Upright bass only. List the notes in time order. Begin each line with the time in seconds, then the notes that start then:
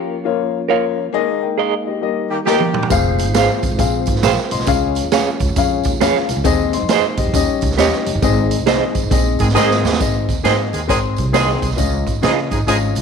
2.90 F1
3.28 G#1
3.63 G1
3.72 G#1
3.79 A#1
4.08 G#1
4.23 A#1
4.52 A#1
4.59 C2
4.67 C#2
5.04 D#2
5.41 C#2
5.49 D#2
5.56 F2
5.85 D#2
6.01 F2
6.29 C2
6.37 C#2
6.45 D#2
6.82 F2
7.18 D#2
7.26 F2
7.34 D#2
7.48 muted upright bass stroke
7.63 C#2
7.78 D#2
8.07 F1
8.15 G1
8.23 G#1
8.59 C2
8.95 G1
9.03 G#1
9.11 A#1
9.40 G#1
9.55 G#2
9.83 D#2
10.01 G#1
10.29 D#2
10.44 G#2
10.73 D#2
10.89 G#1
11.18 C2
11.62 C2
11.78 C#2
12.06 G#1
12.22 C#3
12.52 G#1
12.67 G#1
12.96 C2